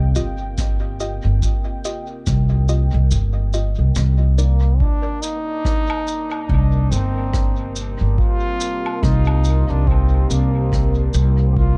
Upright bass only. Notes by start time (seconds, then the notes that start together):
Already playing: C2
0.16 G1
1.25 G1
2.27 C2
2.94 C2
3.11 G1
3.79 C2
3.96 C2
6.49 C2
6.91 G1
8.01 G1
9.03 C2
9.70 C2
10.30 C2
11.14 C2